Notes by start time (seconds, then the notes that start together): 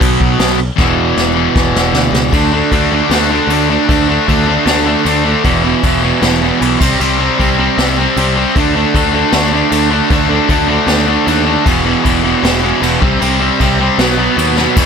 Already playing: B2 F#3 B3
0.01 B1, kick, crash
0.20 B1, kick
0.39 B1, snare, crash
0.76 E1 E2 B2, kick, snare
0.81 E3
0.96 E1
1.17 E1, snare
1.34 E2 B2 E3
1.55 E1, kick, snare
1.75 E1, snare
1.92 D2, snare
2.12 C#2, snare
2.32 D2 D3 A3 D4, kick, crash
2.52 D3 A3 D4
2.72 D2 D3 A3 D4, kick, crash
2.92 D3 A3 D4
3.10 D2 D3 A3 D4, snare, crash
3.30 D3 A3 D4
3.47 D2 D3 A3, crash
3.52 D4
3.69 D3 A3 D4
3.88 D2 D3 A3 D4, kick, crash
4.08 D3 A3 D4
4.27 D2 D3 A3 D4, kick, crash
4.47 D3 A3 D4
4.66 D2 D3 A3 D4, snare, crash
4.85 D3 A3 D4
5.05 D2 D3 A3 D4, crash
5.24 D3 A3 D4
5.44 E1 E2 B2 E3, kick, crash
5.63 E2 B2 E3
5.83 E1 E2 B2 E3, kick, crash
6.03 E2 B2 E3
6.22 E1 E2 B2 E3, snare, crash
6.42 E2 B2 E3
6.60 B1 E2 B2 E3, crash
6.79 C2 C3 G3 C4, kick, crash
7.00 C2 C3 G3 C4, crash
7.19 C3 G3 C4
7.38 C2 C3 G3 C4, kick, crash
7.58 C3 G3 C4
7.78 C2 C3 G3 C4, snare, crash
7.98 C3 G3 C4
8.17 C2 C3 G3 C4, crash
8.36 C3 G3 C4
8.56 D2 D3 A3 D4, kick, crash
8.76 D3 A3 D4
8.94 D2 D3 A3 D4, kick, crash
9.14 D3 A3 D4
9.32 D2 D3 A3 D4, snare, crash
9.54 D3 A3 D4
9.72 D2 D3 A3 D4, crash
9.91 D3 A3 D4
10.10 D2 D3 A3 D4, kick, crash
10.29 D3 A3 D4
10.48 D2 D3 A3 D4, kick, crash
10.68 D3 A3 D4
10.87 D2 D3 A3 D4, snare, crash
11.08 D3 A3 D4
11.26 D#2 D3 A3 D4, crash
11.45 D3 A3 D4
11.65 E1 E2 B2 E3, kick, crash
11.85 E2 B2 E3
12.04 E1 E2 B2 E3, kick, crash
12.23 E2 B2 E3
12.42 E1 E2 B2 E3, snare, crash
12.62 E2 B2 E3
12.80 E1 E2 B2 E3, crash
13.00 C2 C3 G3 C4, kick
13.19 C2 C3 G3 C4, crash
13.40 C3 G3 C4
13.60 C2 C3 G3 C4, kick, crash
13.80 C3 G3 C4
13.98 B1 B2 F#3 B3, snare, crash
14.17 B2 F#3 B3
14.36 D#2 B2 F#3 B3, crash
14.57 B2 F#3 B3, snare
14.75 E1 E2 B2, kick, crash
14.79 E3